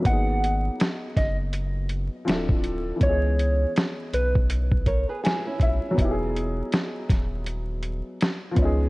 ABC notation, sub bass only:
X:1
M:4/4
L:1/16
Q:"Swing 16ths" 1/4=81
K:G#m
V:1 name="Sub bass" clef=bass
G,,,4 z2 F,,,4- F,,, z =D,,,4 | C,,4 z2 B,,,4- B,,, z3 B,,, z | E,,,4 z2 D,,,4- D,,, z3 C,,2 |]